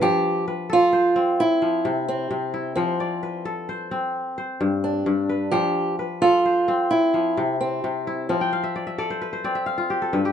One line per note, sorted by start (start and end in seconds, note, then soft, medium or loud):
0.00 1.44 F3 medium
0.00 0.45 G4 loud
0.00 0.47 B4 medium
0.48 1.22 B4 medium
0.70 1.43 F4 loud
0.70 2.01 A4 medium
0.93 2.11 C5 medium
1.16 2.96 C4 medium
1.40 2.04 E4 medium
1.62 1.90 F3 medium
1.85 2.29 C3 medium
2.08 2.74 C4 medium
2.31 2.82 C3 medium
2.54 4.10 E4 medium
2.76 4.20 F3 medium
2.76 4.10 C4 medium
3.00 4.11 D5 medium
3.23 3.97 B4 medium
3.45 4.77 A4 medium
3.69 4.37 C5 medium
3.91 5.35 C4 medium
4.38 5.35 C5 medium
4.61 5.05 G2 medium
4.84 5.55 D4 medium
5.06 5.58 G2 medium
5.29 5.99 B4 medium
5.51 6.96 F3 medium
5.51 5.95 G4 medium
5.99 6.74 B4 medium
6.22 6.93 F4 medium
6.22 7.53 A4 medium
6.45 7.64 C5 medium
6.68 8.48 C4 medium
6.91 7.56 E4 medium
7.14 7.42 F3 medium
7.37 7.83 C3 medium
7.61 8.28 C4 medium
7.84 8.34 C3 medium
8.07 8.59 E4 medium
8.29 9.72 F3 medium
8.29 9.63 C4 medium
8.41 9.34 G5 medium
8.53 8.93 F5 medium
8.63 8.86 E5 medium
8.76 8.98 D5 medium
8.87 9.55 E5 medium
8.98 10.01 A4 medium
8.98 9.44 D5 medium
9.10 9.32 C5 medium
9.22 9.50 B4 medium
9.33 10.19 C5 medium
9.44 10.19 C4 medium
9.44 10.32 D5 medium
9.55 9.84 E5 medium
9.66 10.32 F5 medium
9.78 10.32 F4 medium
9.90 10.25 G4 medium
10.02 10.32 A4 medium
10.13 10.32 G2 medium
10.13 10.32 B4 medium
10.25 10.32 G4 medium